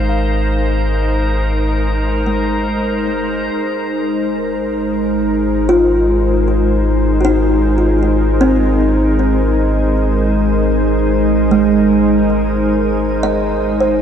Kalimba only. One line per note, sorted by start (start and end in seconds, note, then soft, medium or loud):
0.00 1.75 F5 soft
2.26 4.76 G#3 soft
5.69 7.41 F4 medium
7.21 7.94 F#4 medium
7.25 8.56 D#4 medium
7.78 10.21 F4 soft
8.41 10.84 C4 medium
11.51 13.97 G#3 medium
13.23 13.97 D#5 medium
13.80 14.02 C5 medium